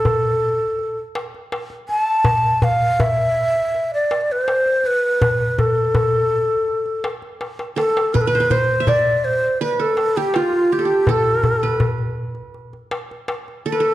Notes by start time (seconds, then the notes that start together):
Already playing: A4
0.05 darbuka dum
0.23 darbuka ka
0.59 darbuka ka
0.79 darbuka ka
1.15 darbuka tek
1.34 darbuka ka
1.52 darbuka tek
1.70 darbuka ka
1.89 A5, darbuka ka
2.25 darbuka dum
2.44 darbuka ka
2.62 F5, darbuka dum
2.82 darbuka ka
3.00 E5, darbuka dum
3.18 darbuka ka
3.56 darbuka ka
3.75 darbuka ka
3.94 D5
4.11 darbuka tek
4.21 D5
4.30 C5, darbuka ka
4.48 darbuka tek
4.66 darbuka ka
4.84 B4, darbuka ka
5.22 darbuka dum
5.41 darbuka ka
5.59 A4, darbuka dum
5.77 darbuka ka
5.95 darbuka dum
6.12 darbuka ka
6.31 darbuka ka
6.49 darbuka ka
6.68 darbuka ka
6.86 darbuka ka
7.04 darbuka tek
7.22 darbuka ka
7.41 darbuka tek
7.59 darbuka ka
7.76 A4, darbuka tek
7.97 darbuka ka
8.14 B4, darbuka dum
8.21 A4
8.27 B4
8.33 C5, darbuka ka
8.40 B4
8.50 C5, darbuka dum
8.70 darbuka ka
8.80 E5
8.87 D5, darbuka dum
9.06 darbuka ka
9.24 C5, darbuka ka
9.43 darbuka ka
9.61 B4, darbuka ka
9.73 B4
9.80 A4, darbuka ka
9.97 darbuka tek
10.16 G4, darbuka ka
10.34 F4, darbuka tek
10.53 darbuka ka
10.71 G4, darbuka ka
10.79 A4
10.85 G4
11.07 A4, darbuka dum
11.26 darbuka ka
11.43 darbuka dum
11.63 B4, darbuka ka
11.80 darbuka dum
11.98 darbuka ka
12.35 darbuka ka
12.54 darbuka ka
12.73 darbuka ka
12.91 darbuka tek
13.11 darbuka ka
13.28 darbuka tek
13.48 darbuka ka
13.66 A4
13.72 B4
13.80 A4